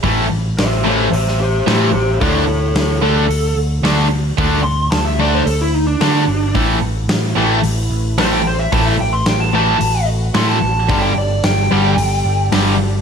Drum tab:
HH |o---o---o---o---|o---o---o---o---|o---o---o---o---|o---o---o---o---|
SD |----o----o--o---|----o-------o---|----o-------o---|----o-------o---|
BD |o---------------|o---------------|o---------------|o---------------|

HH |o---o---o---o---|o---o---o---o---|
SD |----o-------o---|----o-------o---|
BD |o---------------|o---------------|